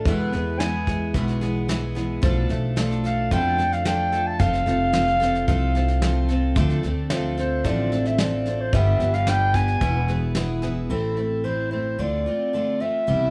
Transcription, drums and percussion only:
0.05 kick, snare
0.33 snare
0.60 snare
0.87 kick, snare
1.14 kick, snare
1.28 snare
1.41 snare
1.69 snare
1.96 snare
2.23 kick, snare
2.50 snare
2.77 snare
2.91 snare
3.05 snare
3.31 kick, snare
3.59 snare
3.72 snare
3.85 snare
4.13 snare
4.40 kick, snare
4.54 snare
4.67 snare
4.93 snare
5.08 snare
5.22 snare
5.35 snare
5.48 kick, snare
5.75 snare
5.88 snare
6.02 snare
6.29 snare
6.56 kick, snare
6.69 snare
6.83 snare
7.10 snare
7.38 snare
7.64 kick, snare
7.92 snare
8.05 snare
8.18 snare
8.46 snare
8.73 kick, snare
9.00 snare
9.14 snare
9.27 snare
9.54 kick, snare
9.68 snare
9.81 kick, snare
10.08 snare
10.35 snare
10.62 snare

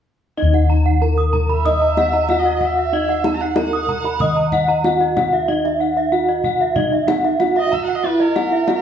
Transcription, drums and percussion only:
0.54 kendang slap
1.33 kendang low
1.50 kendang slap
1.66 kendang low
1.97 kendang high
2.13 kendang slap
2.29 kendang high
2.45 kendang slap
2.61 kendang low
3.08 kendang slap
3.24 kendang high
3.56 kendang high
3.88 kendang low
4.04 kendang slap
4.20 kendang low
4.52 kendang low
4.68 kendang slap
4.84 kendang high
5.01 kendang slap
5.17 kendang high, kendang low
5.65 kendang slap
6.44 kendang low
6.76 kendang low
7.08 kendang high
7.24 kendang slap
7.40 kendang high
7.56 kendang slap
7.73 kendang low
8.20 kendang slap
8.36 kendang high
8.52 kendang slap
8.68 kendang high

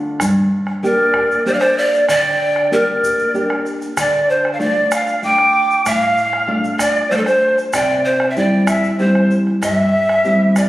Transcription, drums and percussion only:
0.20 bombo rim, bombo low, shaker
0.67 bombo rim
0.85 shaker
1.14 bombo rim, bombo low
1.31 shaker
1.47 shaker
1.61 bombo rim
1.78 shaker
1.93 bombo rim, shaker
2.09 bombo rim, bombo low, shaker
2.56 bombo rim
2.73 shaker
3.03 bombo low, shaker
3.19 shaker
3.35 shaker
3.50 bombo rim
3.66 shaker
3.82 bombo rim, shaker
3.97 bombo rim, bombo low, shaker
4.45 bombo rim
4.60 shaker
4.92 bombo rim, shaker
5.07 shaker
5.23 shaker
5.38 bombo rim
5.70 bombo rim, shaker
5.86 bombo rim, bombo low, shaker
6.02 shaker
6.17 shaker
6.33 bombo rim
6.64 shaker
6.79 bombo rim, bombo low, shaker
6.95 bombo rim, shaker
7.12 shaker
7.26 bombo rim, shaker
7.58 bombo rim, shaker
7.73 bombo rim, bombo low, shaker
8.20 bombo rim
8.36 shaker
8.67 bombo rim, bombo low, shaker
8.84 shaker
8.99 shaker
9.15 bombo rim
9.31 shaker
9.47 bombo rim
9.63 bombo rim, bombo low, shaker
10.09 bombo rim
10.25 shaker
10.56 bombo rim, bombo low, shaker

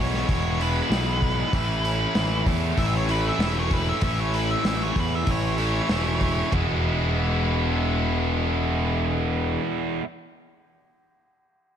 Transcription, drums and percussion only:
0.14 snare
0.29 kick, open hi-hat
0.61 open hi-hat
0.92 snare, open hi-hat
1.22 kick, open hi-hat
1.53 kick, open hi-hat
1.85 open hi-hat
2.15 snare, open hi-hat
2.46 kick, open hi-hat
2.78 kick, open hi-hat
3.09 open hi-hat
3.40 snare, open hi-hat
3.71 kick, open hi-hat
4.01 kick, open hi-hat
4.34 open hi-hat
4.65 snare, open hi-hat
4.96 kick, open hi-hat
5.27 kick, open hi-hat
5.58 open hi-hat
5.89 snare, open hi-hat
6.21 kick, open hi-hat
6.52 kick, floor tom, ride bell

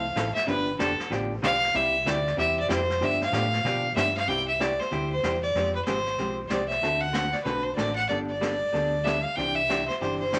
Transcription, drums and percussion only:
0.17 snare, hi-hat pedal
0.36 snare
0.48 brush sweep, snare
0.80 snare, hi-hat pedal
0.99 snare
1.11 brush sweep, snare
1.43 snare, hi-hat pedal
1.63 snare
1.75 brush sweep, snare
2.07 snare, hi-hat pedal
2.27 snare
2.38 brush sweep, snare
2.70 snare, hi-hat pedal
2.90 snare
3.02 brush sweep, snare
3.21 snare
3.33 snare, hi-hat pedal
3.53 snare
3.65 brush sweep, snare
3.97 snare, hi-hat pedal
4.17 snare
4.29 brush sweep, snare
4.60 snare, hi-hat pedal
4.81 snare
4.92 brush sweep, snare
5.24 snare, hi-hat pedal
5.55 brush sweep, snare
5.86 snare, hi-hat pedal
6.06 snare
6.18 brush sweep, snare
6.50 snare, hi-hat pedal
6.71 snare
6.83 brush sweep, snare
7.14 snare, hi-hat pedal
7.34 snare
7.45 brush sweep, snare
7.78 snare, hi-hat pedal
8.10 brush sweep, snare
8.42 snare, hi-hat pedal
8.74 brush sweep, snare
9.06 snare, hi-hat pedal
9.38 brush sweep, snare
9.70 snare, hi-hat pedal
9.90 snare
10.02 brush sweep, snare
10.33 snare, hi-hat pedal

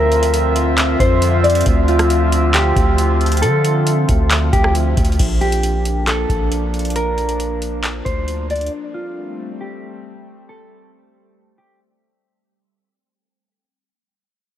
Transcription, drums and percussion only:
0.12 closed hi-hat
0.23 closed hi-hat
0.34 closed hi-hat
0.56 closed hi-hat
0.78 clap, closed hi-hat
1.00 kick, closed hi-hat
1.22 closed hi-hat
1.44 closed hi-hat
1.50 closed hi-hat
1.55 closed hi-hat
1.61 closed hi-hat
1.66 kick, closed hi-hat
1.88 closed hi-hat
1.99 cross-stick, closed hi-hat
2.10 closed hi-hat
2.32 closed hi-hat
2.54 clap, closed hi-hat
2.76 kick, closed hi-hat
2.98 closed hi-hat
3.21 closed hi-hat
3.26 closed hi-hat
3.32 closed hi-hat
3.37 closed hi-hat
3.43 closed hi-hat
3.65 closed hi-hat
3.87 closed hi-hat
4.09 kick, closed hi-hat
4.31 clap, closed hi-hat
4.53 kick, closed hi-hat
4.64 cross-stick
4.75 closed hi-hat
4.97 kick, closed hi-hat
5.05 closed hi-hat
5.12 closed hi-hat
5.19 kick, closed hi-hat, crash
5.41 closed hi-hat
5.52 closed hi-hat
5.63 closed hi-hat
5.85 closed hi-hat
6.07 clap, closed hi-hat
6.29 kick, closed hi-hat
6.52 closed hi-hat
6.74 closed hi-hat
6.79 closed hi-hat
6.85 closed hi-hat
6.90 closed hi-hat
6.96 closed hi-hat
7.18 closed hi-hat
7.29 closed hi-hat
7.40 closed hi-hat
7.62 closed hi-hat
7.84 clap, closed hi-hat
8.06 kick, closed hi-hat
8.28 closed hi-hat
8.50 closed hi-hat
8.56 closed hi-hat
8.61 closed hi-hat
8.66 closed hi-hat

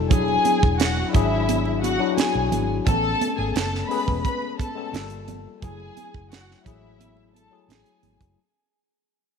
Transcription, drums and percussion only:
0.10 kick, closed hi-hat, low conga
0.28 muted conga
0.45 closed hi-hat, high conga
0.63 kick
0.80 snare, closed hi-hat
0.97 muted conga
1.14 kick, closed hi-hat
1.49 closed hi-hat, muted conga, high conga
1.65 muted conga
1.83 closed hi-hat, high conga
2.18 snare, closed hi-hat, high conga
2.34 muted conga
2.52 closed hi-hat, high conga, low conga
2.86 kick, closed hi-hat, muted conga, low conga
3.21 closed hi-hat, high conga
3.56 snare, closed hi-hat, muted conga
3.74 snare, muted conga
3.91 open hi-hat
4.08 kick
4.25 kick, closed hi-hat, high conga
4.42 muted conga
4.59 kick, closed hi-hat, high conga
4.94 snare, closed hi-hat, muted conga, high conga
5.10 closed hi-hat, muted conga
5.28 closed hi-hat, high conga, low conga
5.62 kick, closed hi-hat, low conga
5.80 muted conga
5.97 closed hi-hat, high conga
6.14 kick
6.32 snare, closed hi-hat, muted conga
6.51 snare
6.66 kick, closed hi-hat
7.00 closed hi-hat, high conga
7.17 muted conga
7.34 closed hi-hat, high conga
7.69 snare, closed hi-hat, high conga
7.85 closed hi-hat, muted conga
8.03 closed hi-hat, high conga, low conga
8.21 kick, closed hi-hat

